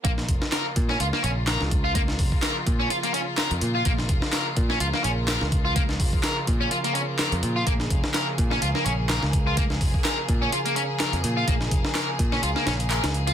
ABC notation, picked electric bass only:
X:1
M:4/4
L:1/16
Q:"Swing 16ths" 1/4=126
K:Bbm
V:1 name="Picked electric bass" clef=bass
B,,,2 F,,, z3 B,,2 D,, z B,,,3 D,,3- | D,,2 F,,, z3 B,,2 z4 z F,, B,,2 | B,,,2 F,,, z3 B,,2 D,, z B,,,3 D,,3- | D,,2 F,,, z3 B,,2 z4 z F,, B,,2 |
B,,,2 F,,, z3 B,,2 D,, z B,,,3 D,,3- | D,,2 F,,, z3 B,,2 z4 z F,, B,,2 | B,,,2 F,,, z3 B,,2 D,, z B,,,3 D,,3 |]